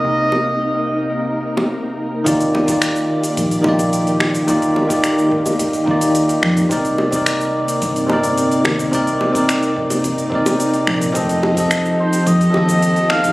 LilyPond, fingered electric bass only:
\new Staff \with { instrumentName = "Fingered electric bass" } { \clef bass \time 4/4 \key ees \major \tempo 4 = 108 c,1 | ees,4. r8 bes,,8 bes,,4. | ees,4. r4 ees,4 f,8 | c,4. r8 g,,4. ees,8 |
c,4. r2 bes,,8 | f,,4. r8 f,8 ees,4. | }